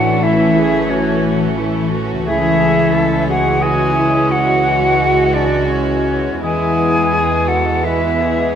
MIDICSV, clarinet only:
0, 0, Header, 1, 2, 480
1, 0, Start_track
1, 0, Tempo, 675676
1, 169, Time_signature, 3, 2, 24, 8
1, 2573, Tempo, 689655
1, 4013, Tempo, 740741
1, 4493, Tempo, 700117
1, 5453, Tempo, 790514
1, 5890, End_track
2, 0, Start_track
2, 0, Title_t, "Clarinet"
2, 0, Program_c, 0, 71
2, 0, Note_on_c, 0, 66, 72
2, 165, Note_on_c, 0, 64, 60
2, 175, Note_off_c, 0, 66, 0
2, 640, Note_on_c, 0, 61, 55
2, 651, Note_off_c, 0, 64, 0
2, 881, Note_off_c, 0, 61, 0
2, 1612, Note_on_c, 0, 64, 67
2, 2306, Note_off_c, 0, 64, 0
2, 2337, Note_on_c, 0, 66, 61
2, 2562, Note_on_c, 0, 68, 64
2, 2573, Note_off_c, 0, 66, 0
2, 3045, Note_on_c, 0, 66, 73
2, 3056, Note_off_c, 0, 68, 0
2, 3776, Note_on_c, 0, 62, 60
2, 3786, Note_off_c, 0, 66, 0
2, 4004, Note_on_c, 0, 61, 54
2, 4014, Note_off_c, 0, 62, 0
2, 4487, Note_on_c, 0, 68, 69
2, 4497, Note_off_c, 0, 61, 0
2, 5208, Note_on_c, 0, 66, 57
2, 5219, Note_off_c, 0, 68, 0
2, 5456, Note_on_c, 0, 64, 50
2, 5465, Note_off_c, 0, 66, 0
2, 5824, Note_off_c, 0, 64, 0
2, 5890, End_track
0, 0, End_of_file